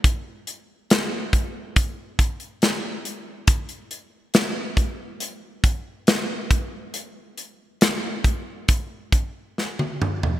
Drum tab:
HH |x-x-x-x-x-xxx-x-|xxx-x-x-x-x-x-x-|x-x-x-x-x-x-----|
SD |----o-------o---|----o-------o---|----o-------o---|
T1 |----------------|----------------|-------------o--|
T2 |----------------|----------------|--------------o-|
FT |----------------|----------------|---------------o|
BD |o-----o-o-o-----|o-----o---o---o-|------o-o-o-----|